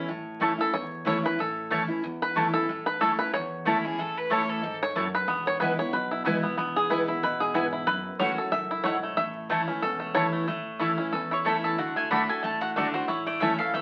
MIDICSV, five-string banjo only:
0, 0, Header, 1, 2, 480
1, 0, Start_track
1, 0, Key_signature, 3, "major"
1, 0, Tempo, 325027
1, 131, Time_signature, 4, 2, 24, 8
1, 20403, End_track
2, 0, Start_track
2, 0, Title_t, "Five-string banjo"
2, 0, Program_c, 0, 105
2, 895, Note_on_c, 0, 69, 98
2, 1086, Note_on_c, 0, 73, 100
2, 1104, Note_off_c, 0, 69, 0
2, 1566, Note_off_c, 0, 73, 0
2, 1584, Note_on_c, 0, 73, 102
2, 1825, Note_off_c, 0, 73, 0
2, 1854, Note_on_c, 0, 71, 86
2, 2063, Note_off_c, 0, 71, 0
2, 2068, Note_on_c, 0, 69, 76
2, 2505, Note_off_c, 0, 69, 0
2, 3281, Note_on_c, 0, 71, 94
2, 3723, Note_off_c, 0, 71, 0
2, 3744, Note_on_c, 0, 69, 88
2, 4226, Note_on_c, 0, 71, 99
2, 4242, Note_off_c, 0, 69, 0
2, 4426, Note_off_c, 0, 71, 0
2, 4443, Note_on_c, 0, 69, 93
2, 4706, Note_on_c, 0, 71, 99
2, 4719, Note_off_c, 0, 69, 0
2, 4920, Note_off_c, 0, 71, 0
2, 4926, Note_on_c, 0, 73, 102
2, 5371, Note_off_c, 0, 73, 0
2, 7127, Note_on_c, 0, 73, 114
2, 7564, Note_off_c, 0, 73, 0
2, 7598, Note_on_c, 0, 71, 103
2, 7796, Note_on_c, 0, 59, 73
2, 8039, Note_off_c, 0, 71, 0
2, 8079, Note_on_c, 0, 73, 94
2, 8262, Note_off_c, 0, 73, 0
2, 8268, Note_on_c, 0, 71, 89
2, 8543, Note_off_c, 0, 71, 0
2, 8549, Note_on_c, 0, 73, 98
2, 8594, Note_off_c, 0, 59, 0
2, 8760, Note_on_c, 0, 71, 85
2, 8767, Note_off_c, 0, 73, 0
2, 9027, Note_on_c, 0, 64, 63
2, 9206, Note_off_c, 0, 71, 0
2, 9219, Note_off_c, 0, 64, 0
2, 9225, Note_on_c, 0, 64, 56
2, 9496, Note_on_c, 0, 59, 62
2, 9692, Note_off_c, 0, 59, 0
2, 9709, Note_on_c, 0, 59, 73
2, 9988, Note_on_c, 0, 68, 87
2, 10182, Note_off_c, 0, 64, 0
2, 10188, Note_on_c, 0, 64, 60
2, 10407, Note_off_c, 0, 59, 0
2, 10453, Note_off_c, 0, 64, 0
2, 10459, Note_on_c, 0, 64, 65
2, 10678, Note_off_c, 0, 68, 0
2, 10683, Note_on_c, 0, 71, 90
2, 10932, Note_on_c, 0, 68, 87
2, 10956, Note_off_c, 0, 71, 0
2, 11143, Note_off_c, 0, 64, 0
2, 11143, Note_on_c, 0, 64, 54
2, 11410, Note_off_c, 0, 64, 0
2, 11410, Note_on_c, 0, 64, 60
2, 11582, Note_off_c, 0, 68, 0
2, 11620, Note_on_c, 0, 71, 105
2, 12074, Note_off_c, 0, 71, 0
2, 12102, Note_on_c, 0, 73, 98
2, 12377, Note_on_c, 0, 69, 60
2, 12555, Note_off_c, 0, 73, 0
2, 12580, Note_on_c, 0, 76, 113
2, 12854, Note_off_c, 0, 64, 0
2, 12860, Note_on_c, 0, 64, 63
2, 13042, Note_off_c, 0, 76, 0
2, 13048, Note_on_c, 0, 73, 106
2, 13338, Note_on_c, 0, 57, 62
2, 13507, Note_off_c, 0, 73, 0
2, 13541, Note_on_c, 0, 76, 99
2, 13796, Note_off_c, 0, 76, 0
2, 14021, Note_off_c, 0, 57, 0
2, 14027, Note_on_c, 0, 57, 63
2, 14290, Note_on_c, 0, 61, 65
2, 14444, Note_off_c, 0, 69, 0
2, 14507, Note_on_c, 0, 69, 88
2, 14725, Note_off_c, 0, 57, 0
2, 14763, Note_on_c, 0, 57, 62
2, 14927, Note_off_c, 0, 64, 0
2, 14946, Note_off_c, 0, 61, 0
2, 14982, Note_on_c, 0, 73, 107
2, 15006, Note_off_c, 0, 69, 0
2, 15229, Note_off_c, 0, 57, 0
2, 15247, Note_on_c, 0, 57, 65
2, 15435, Note_off_c, 0, 73, 0
2, 15453, Note_off_c, 0, 57, 0
2, 15471, Note_on_c, 0, 57, 74
2, 15941, Note_on_c, 0, 64, 57
2, 16210, Note_on_c, 0, 61, 62
2, 16429, Note_on_c, 0, 69, 67
2, 16644, Note_off_c, 0, 64, 0
2, 16706, Note_on_c, 0, 64, 62
2, 16868, Note_off_c, 0, 61, 0
2, 16915, Note_off_c, 0, 57, 0
2, 16921, Note_on_c, 0, 57, 58
2, 17185, Note_off_c, 0, 69, 0
2, 17191, Note_on_c, 0, 69, 60
2, 17357, Note_off_c, 0, 64, 0
2, 17405, Note_on_c, 0, 66, 63
2, 17657, Note_off_c, 0, 57, 0
2, 17663, Note_on_c, 0, 57, 55
2, 17878, Note_on_c, 0, 62, 58
2, 18098, Note_off_c, 0, 66, 0
2, 18145, Note_off_c, 0, 69, 0
2, 18151, Note_on_c, 0, 69, 60
2, 18317, Note_off_c, 0, 57, 0
2, 18352, Note_on_c, 0, 57, 67
2, 18575, Note_off_c, 0, 62, 0
2, 18631, Note_on_c, 0, 66, 58
2, 18802, Note_off_c, 0, 69, 0
2, 18827, Note_off_c, 0, 57, 0
2, 18845, Note_on_c, 0, 57, 65
2, 19088, Note_off_c, 0, 66, 0
2, 19106, Note_on_c, 0, 66, 60
2, 19310, Note_off_c, 0, 66, 0
2, 19316, Note_on_c, 0, 64, 62
2, 19326, Note_off_c, 0, 57, 0
2, 19589, Note_on_c, 0, 57, 59
2, 19800, Note_on_c, 0, 61, 63
2, 20077, Note_on_c, 0, 69, 60
2, 20243, Note_off_c, 0, 57, 0
2, 20285, Note_on_c, 0, 57, 67
2, 20403, Note_off_c, 0, 57, 0
2, 20403, Note_off_c, 0, 61, 0
2, 20403, Note_off_c, 0, 64, 0
2, 20403, Note_off_c, 0, 69, 0
2, 20403, End_track
0, 0, End_of_file